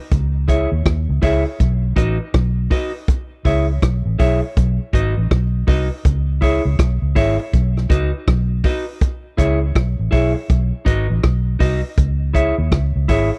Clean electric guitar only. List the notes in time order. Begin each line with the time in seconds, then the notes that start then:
0.48 E4 G#4 C#5 E5
1.22 E4 G#4 C#5 E5
1.46 muted clean electric guitar stroke
1.96 D#4 F#4 B4 D#5
2.70 D#4 F#4 B4 D#5
3.45 E4 G#4 C#5 E5
4.19 E4 G#4 C#5 E5
4.42 muted clean electric guitar stroke
4.93 D#4 F#4 B4 D#5
5.67 D#4 F#4 B4 D#5
6.41 E4 G#4 C#5 E5
7.15 E4 G#4 C#5 E5
7.39 muted clean electric guitar stroke
7.89 D#4 F#4 B4 D#5
8.64 D#4 F#4 B4 D#5
9.37 E4 G#4 C#5 E5
10.11 E4 G#4 C#5 E5
10.35 muted clean electric guitar stroke
10.85 D#4 F#4 B4 D#5
11.59 D#4 F#4 B4 D#5
12.33 E4 G#4 C#5 E5
13.08 E4 G#4 C#5 E5
13.32 muted clean electric guitar stroke